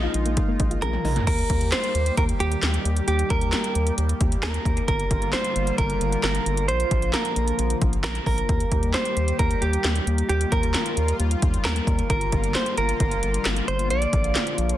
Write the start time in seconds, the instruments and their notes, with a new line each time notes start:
Already playing: analog synth pad D#3 G#3 A#3 F4, clean electric guitar D#4
0.03 synth arpeggio sound F4
0.14 analog synth bass A#1, closed hi-hat
0.26 synth arpeggio sound A#3, closed hi-hat
0.37 synth arpeggio sound G#3, kick, closed hi-hat
0.48 synth arpeggio sound A#3
0.60 analog synth bass A#1, synth arpeggio sound D#4, kick, closed hi-hat
0.71 synth arpeggio sound F4, closed hi-hat
0.82 analog synth bass A#1, synth arpeggio sound G#4, clean electric guitar A#4, closed hi-hat, high tom
0.93 mid tom
1.05 analog synth bass A#1, synth arpeggio sound D#4, mid tom, open hi-hat
1.16 synth arpeggio sound A#3, closed hi-hat, floor tom
1.27 analog synth bass D#2, analog synth pad D#3 G3 A#3 G4, clean electric guitar A#4, kick, closed hi-hat, crash
1.39 closed hi-hat
1.50 analog synth bass D#2, kick, closed hi-hat
1.61 closed hi-hat
1.72 clean electric guitar C5, snare, clap, closed hi-hat
1.84 closed hi-hat
1.95 analog synth bass D#2, closed hi-hat
2.06 closed hi-hat
2.17 analog synth bass D#2, clean electric guitar A#4, kick, closed hi-hat
2.29 closed hi-hat
2.40 analog synth bass D#2, clean electric guitar G4, closed hi-hat
2.52 closed hi-hat
2.63 analog synth bass D#2, snare, clap, closed hi-hat
2.74 closed hi-hat
2.85 analog synth bass D#2, closed hi-hat
2.96 closed hi-hat
3.08 analog synth bass D#2, clean electric guitar G4, closed hi-hat
3.19 closed hi-hat
3.30 analog synth bass D#2, clean electric guitar A#4, kick, closed hi-hat
3.41 closed hi-hat
3.53 snare, clap, closed hi-hat
3.64 closed hi-hat
3.75 analog synth bass D#2, closed hi-hat
3.87 closed hi-hat
3.98 analog synth bass D#2, closed hi-hat
4.09 closed hi-hat
4.21 analog synth bass D#2, kick, closed hi-hat
4.32 closed hi-hat
4.43 analog synth bass D#2, clean electric guitar A#4, snare, clap, closed hi-hat
4.54 closed hi-hat
4.65 analog synth bass D#2, kick, closed hi-hat
4.77 closed hi-hat
4.88 analog synth bass G1, analog synth pad D3 G3 F4, clean electric guitar A#4, kick, closed hi-hat
5.00 closed hi-hat
5.11 analog synth bass G1, kick, closed hi-hat
5.22 closed hi-hat
5.33 clean electric guitar C5, snare, clap, closed hi-hat
5.44 closed hi-hat
5.56 analog synth bass G1, closed hi-hat
5.67 closed hi-hat
5.78 analog synth bass G1, clean electric guitar A#4, kick, closed hi-hat
5.90 closed hi-hat
6.01 analog synth bass G1, closed hi-hat
6.12 closed hi-hat
6.23 analog synth bass G1, clean electric guitar A#4, snare, clap, closed hi-hat
6.35 closed hi-hat
6.46 analog synth bass G1, closed hi-hat
6.57 closed hi-hat
6.68 analog synth bass A#1, analog synth pad F3, clean electric guitar C5, closed hi-hat
6.80 closed hi-hat
6.91 analog synth bass A#1, kick, closed hi-hat
7.02 closed hi-hat
7.13 clean electric guitar A#4, snare, clap, closed hi-hat
7.25 closed hi-hat
7.36 analog synth bass A#1, closed hi-hat
7.48 closed hi-hat
7.59 analog synth bass A#1, closed hi-hat
7.70 closed hi-hat
7.82 analog synth bass A#1, kick, closed hi-hat
7.93 closed hi-hat
8.04 analog synth bass A#1, clean electric guitar A#4, snare, clap, closed hi-hat
8.15 closed hi-hat
8.26 analog synth bass A#1, clean electric guitar A#4, kick, open hi-hat
8.38 closed hi-hat
8.49 analog synth bass D#2, analog synth pad D#3 G3 G4, kick, closed hi-hat
8.60 closed hi-hat
8.72 analog synth bass D#2, kick, closed hi-hat
8.83 closed hi-hat
8.94 clean electric guitar C5, snare, clap, closed hi-hat
9.05 closed hi-hat
9.17 analog synth bass D#2, closed hi-hat
9.28 closed hi-hat
9.39 analog synth bass D#2, clean electric guitar A#4, kick, closed hi-hat
9.51 closed hi-hat
9.62 analog synth bass D#2, clean electric guitar G4, closed hi-hat
9.73 closed hi-hat
9.84 analog synth bass D#2, snare, clap, closed hi-hat
9.96 closed hi-hat
10.07 analog synth bass D#2, closed hi-hat
10.18 closed hi-hat
10.29 analog synth bass D#2, analog synth pad F4, clean electric guitar G4, closed hi-hat
10.41 closed hi-hat
10.52 analog synth bass D#2, clean electric guitar A#4, kick, closed hi-hat
10.63 closed hi-hat
10.74 snare, clap, closed hi-hat
10.86 closed hi-hat
10.97 analog synth bass D#2, closed hi-hat
11.08 closed hi-hat
11.20 analog synth bass D#2, closed hi-hat
11.31 closed hi-hat
11.42 analog synth bass D#2, kick, closed hi-hat
11.54 closed hi-hat
11.65 analog synth bass D#2, clean electric guitar A#4, snare, clap, closed hi-hat
11.76 closed hi-hat
11.87 analog synth bass D#2, kick, closed hi-hat
11.99 closed hi-hat
12.10 analog synth bass G1, analog synth pad D3 A#3 F4, clean electric guitar A#4, kick, closed hi-hat
12.21 closed hi-hat
12.32 analog synth bass G1, kick, closed hi-hat
12.44 closed hi-hat
12.55 clean electric guitar C5, snare, clap, closed hi-hat
12.66 closed hi-hat
12.77 analog synth bass G1, clean electric guitar A#4, closed hi-hat
12.89 closed hi-hat
13.00 analog synth bass G1, kick, closed hi-hat
13.11 closed hi-hat
13.23 analog synth bass G1, closed hi-hat
13.34 closed hi-hat
13.45 analog synth bass G1, snare, clap, closed hi-hat
13.56 closed hi-hat
13.68 analog synth bass G1, clean electric guitar C5, closed hi-hat
13.79 closed hi-hat
13.90 analog synth bass A#1, analog synth pad F3, clean electric guitar D5, closed hi-hat
14.02 closed hi-hat
14.13 analog synth bass A#1, kick, closed hi-hat
14.24 closed hi-hat
14.35 snare, clap, closed hi-hat
14.47 closed hi-hat
14.58 analog synth bass A#1, closed hi-hat
14.69 closed hi-hat